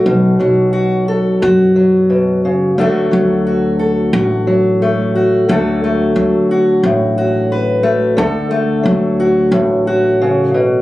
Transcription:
<<
  \new Staff \with { instrumentName = "Steel-string acoustic guitar" } { \time 4/4 \key d \major \tempo 4 = 89 << { r4 fis'8 a'8 fis'2 | <fis a fis' a'>4 fis'8 a'8 fis'4 a8 fis'8 | <fis a fis' a'>8 a4 fis'4 fis'8 b'8 a8 | a'8 a4 fis'4 fis'4. | } \\ { b,8 fis2 fis8 b,8 cis8 | d8 fis2 fis4. | d4 fis4 a,2 | d4 fis4 a,4 cis8 b,8 | } >> }
  \new Staff \with { instrumentName = "Upright bass" } { \clef bass \time 4/4 \key d \major b,,8 b,,4. fis,2 | d,8 d,4. a,,2 | d,4 d,4 a,,2 | d,4 d,4 a,,2 | }
>>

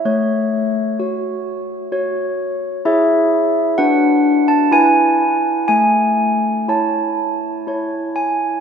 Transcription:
\new Staff \with { instrumentName = "Handbells" } { \time 3/4 \key a \major \tempo 4 = 63 << { cis''2~ cis''8 r8 | e''4 fis''8. a''16 gis''4 | gis''4 a''4 r8 gis''8 | } \\ { a4 <fis' cis''>4 <fis' cis''>4 | <e' gis' cis''>4 <d' fis' b'>4 <e' b'>4 | a4 <e' cis''>4 <e' cis''>4 | } >> }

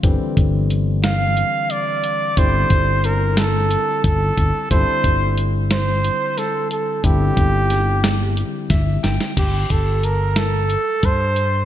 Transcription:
<<
  \new Staff \with { instrumentName = "Trumpet" } { \time 7/8 \key c \mixolydian \tempo 4 = 90 r4. f''4 d''4 | c''4 bes'8 a'4 a'4 | c''4 r8 c''4 a'8 a'8 | g'2~ g'8 r4 |
g'8 a'8 bes'8 a'4 c''4 | }
  \new Staff \with { instrumentName = "Tine electric piano" } { \time 7/8 \key c \mixolydian r2. r8 | r2. r8 | r2. r8 | r2 r8 e''8 g''8 |
r2. r8 | }
  \new Staff \with { instrumentName = "Tine electric piano" } { \clef bass \time 7/8 \key c \mixolydian <d e g c'>2.~ <d e g c'>8 | <d g c' e'>2.~ <d g c' e'>8 | <d g c' e'>2.~ <d g c' e'>8 | <d g c' e'>2.~ <d g c' e'>8 |
r2. r8 | }
  \new Staff \with { instrumentName = "Fretless electric bass" } { \clef bass \time 7/8 \key c \mixolydian g,,16 r16 g,,2 r4 | g,,8 g,,2 g,,8 g,,16 r16 | g,,16 r16 g,,2 r4 | g,,8 g,,2 g,,8 g,,16 r16 |
g,,8 g,,2 g,4 | }
  \new DrumStaff \with { instrumentName = "Drums" } \drummode { \time 7/8 <hh bd>8 <hh bd>8 hh8 <hh sn>8 hh8 hh8 hh8 | <hh bd>8 <hh bd>8 hh8 <hh sn>8 hh8 <hh bd>8 <hh bd>8 | <hh bd>8 <hh bd>8 hh8 <hh sn>8 hh8 <hh sn>8 hh8 | <hh bd>8 <hh bd>8 <hh sn>8 <hh sn>8 hh8 <hh bd sn>8 <hh sn>16 sn16 |
<cymc hh bd>8 <hh bd>8 hh8 <hh sn>8 hh8 <hh bd>8 hh8 | }
>>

